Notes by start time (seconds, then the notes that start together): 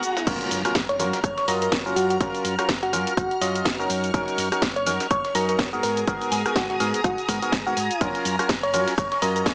Already playing: B3 F#4 G#4 F#5 G#5 A#5, swell
0.03 closed hi-hat, shaker
0.17 snare, closed hi-hat, shaker
0.27 F#1 F#3 C#4 F4 F#4 A#4 A#5 F6, kick, closed hi-hat, crash, impact, shaker
0.41 closed hi-hat, shaker
0.51 F#2, closed hi-hat, open hi-hat, shaker
0.65 F#3 C#4 F4 F#4 A#4, cross-stick, closed hi-hat, shaker
0.75 F#1, kick, snare, closed hi-hat, shaker
0.89 C#5, closed hi-hat
0.99 F#2 F#3 C#4 F4 F#4 A#4 C#5, closed hi-hat, open hi-hat, shaker
1.13 snare, closed hi-hat, shaker
1.24 F#1 C#5, kick, cross-stick, closed hi-hat, shaker
1.37 C#5, snare, closed hi-hat
1.48 F#2 F#3 C#4 F4 F#4 A#4 D#5, closed hi-hat, open hi-hat, shaker
1.62 A#4, closed hi-hat, shaker
1.72 F#1, kick, snare, closed hi-hat, shaker
1.86 F#3 C#4 F4 F#4 A#4, shaker
1.96 F#2 F#4, closed hi-hat, open hi-hat, shaker
2.10 F#4, closed hi-hat, shaker
2.20 F#1 F#3 C#4 F4 F#4 A#4, kick, closed hi-hat, shaker
2.34 closed hi-hat, shaker
2.45 F#2, closed hi-hat, open hi-hat, shaker
2.59 F#3 C#4 F4 F#4 A#4, cross-stick, closed hi-hat, shaker
2.69 F#1, kick, snare, closed hi-hat, shaker
2.83 F#4, snare, closed hi-hat
2.93 F#2 F#3 C#4 F4 F#4 A#4, closed hi-hat, open hi-hat, shaker
3.07 closed hi-hat, shaker
3.17 F#1 F#4, kick, cross-stick, closed hi-hat, shaker
3.31 closed hi-hat
3.41 F#2 F#3 C#4 F4 F#4 D#5, closed hi-hat, open hi-hat, shaker
3.56 closed hi-hat, shaker
3.65 F#1, kick, snare, closed hi-hat, shaker
3.79 F#3 C#4 D#4 F#4 A#4, shaker
3.90 F#2 C#6, closed hi-hat, open hi-hat, shaker
4.04 closed hi-hat, shaker
4.14 F#1 F#3 C#4 D#4 F#4 A#4, kick, closed hi-hat, shaker
4.28 closed hi-hat, shaker
4.38 F#2, closed hi-hat, open hi-hat, shaker
4.52 F#3 C#4 D#4 F#4 A#4, cross-stick, closed hi-hat, shaker
4.62 F#1, kick, snare, closed hi-hat, shaker
4.76 C#5, closed hi-hat
4.87 F#2 F#3 C#4 D#4 F#4 A#4 C#5, closed hi-hat, open hi-hat, shaker
5.00 snare, closed hi-hat, shaker
5.11 F#1 C#5, kick, cross-stick, closed hi-hat, shaker
5.25 C#5, snare, closed hi-hat
5.35 F#2 F#3 C#4 D#4 F#4 A#4 D#5, closed hi-hat, open hi-hat, shaker
5.49 A#4, closed hi-hat, shaker
5.59 F#1, kick, snare, closed hi-hat, shaker
5.73 G#2 B3 F#4 G#4 A#4, shaker
5.83 G#2 G#4 A#4 G#5 A#5 D#6, closed hi-hat, open hi-hat, shaker
5.97 closed hi-hat, shaker
6.08 G#1 G#2 B3 F#4 G#4 A#4, kick, closed hi-hat, shaker
6.21 closed hi-hat, shaker
6.32 G#2 G#4, closed hi-hat, open hi-hat, shaker
6.46 G#2 B3 F#4 G#4 A#4, cross-stick, closed hi-hat, shaker
6.56 G#1 F#4, kick, snare, closed hi-hat, shaker
6.70 F#4, snare, closed hi-hat
6.80 G#2 B3 F#4 G#4 A#4, closed hi-hat, open hi-hat, shaker
6.94 closed hi-hat, shaker
7.04 G#1 F#4, kick, cross-stick, closed hi-hat, shaker
7.18 closed hi-hat, shaker
7.28 G#2 B3 F#4 G#4 A#4, kick, closed hi-hat, open hi-hat, shaker
7.42 G#2 B3 F#4 G#4 A#4, closed hi-hat, shaker
7.52 G#1, kick, snare, closed hi-hat, shaker
7.67 G#2 B3 F#4 G#4 A#4, shaker
7.77 G#2, closed hi-hat, open hi-hat, shaker
7.91 closed hi-hat, shaker
8.01 F#1 F#3 C#4 F4 F#4 A#4 F6, kick, closed hi-hat, ride, shaker
8.15 closed hi-hat, shaker
8.25 F#2, closed hi-hat, open hi-hat, shaker
8.39 F#3 C#4 F4 F#4 A#4, cross-stick, closed hi-hat, shaker
8.49 F#1, kick, snare, closed hi-hat, ride, shaker
8.63 C#5, closed hi-hat
8.74 F#2 F#3 C#4 F4 F#4 A#4 C#5, closed hi-hat, open hi-hat, shaker
8.88 snare, closed hi-hat, shaker
8.98 F#1 C#5, kick, cross-stick, closed hi-hat, ride, shaker
9.12 C#5, snare, closed hi-hat
9.22 F#2 F#3 C#4 F4 F#4 A#4 D#5, closed hi-hat, open hi-hat, shaker
9.36 A#4, closed hi-hat, shaker
9.46 F#1, kick, snare, closed hi-hat, ride, shaker